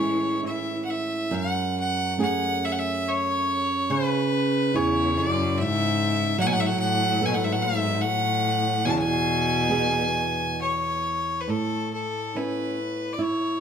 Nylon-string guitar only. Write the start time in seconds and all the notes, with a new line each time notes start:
Already playing: A2 G#3 E4
0.00 C#4
0.43 E4
1.31 F#2
2.18 A3 C#4 G#4
3.90 C#3
4.74 E4 G#4
6.39 F#3
7.21 B3 A4
8.85 E2
9.69 B3 E4 G#4
11.48 A2
12.35 B3 C#4 E4
13.19 E4